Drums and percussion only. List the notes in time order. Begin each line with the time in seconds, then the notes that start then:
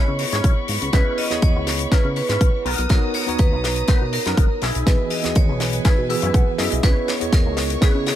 0.19 open hi-hat
0.32 snare, closed hi-hat
0.44 kick, closed hi-hat
0.68 open hi-hat
0.82 closed hi-hat
0.93 kick, snare, closed hi-hat
1.18 open hi-hat
1.31 snare, closed hi-hat
1.42 kick, closed hi-hat
1.67 snare, open hi-hat
1.79 closed hi-hat
1.92 kick, snare, closed hi-hat
2.16 open hi-hat
2.29 snare, closed hi-hat
2.41 kick, closed hi-hat
2.66 open hi-hat
2.78 closed hi-hat
2.89 kick, snare, closed hi-hat
3.14 open hi-hat
3.29 closed hi-hat
3.39 kick, closed hi-hat
3.64 snare, open hi-hat
3.76 closed hi-hat
3.88 kick, snare, closed hi-hat
4.13 open hi-hat
4.26 snare, closed hi-hat
4.37 kick, closed hi-hat
4.62 snare, open hi-hat
4.75 closed hi-hat
4.87 kick, snare, closed hi-hat
5.10 open hi-hat
5.24 snare, closed hi-hat
5.35 kick, closed hi-hat
5.60 snare, open hi-hat
5.73 closed hi-hat
5.85 kick, snare, closed hi-hat
6.10 open hi-hat
6.22 closed hi-hat
6.34 kick, closed hi-hat
6.58 snare, open hi-hat
6.72 closed hi-hat
6.83 kick, snare, closed hi-hat
7.08 snare, open hi-hat
7.21 closed hi-hat
7.33 kick, snare, closed hi-hat
7.57 snare, open hi-hat
7.70 closed hi-hat
7.82 kick, snare, closed hi-hat
8.06 snare, open hi-hat